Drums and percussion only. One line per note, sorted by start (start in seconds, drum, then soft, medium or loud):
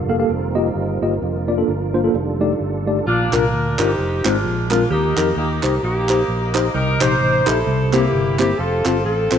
3.33 clap loud
3.79 clap medium
4.25 clap loud
4.71 clap medium
5.17 clap loud
5.63 clap medium
6.09 clap loud
6.55 clap medium
7.01 clap loud
7.47 clap medium
7.93 clap loud
8.39 clap medium
8.86 clap loud
9.32 clap medium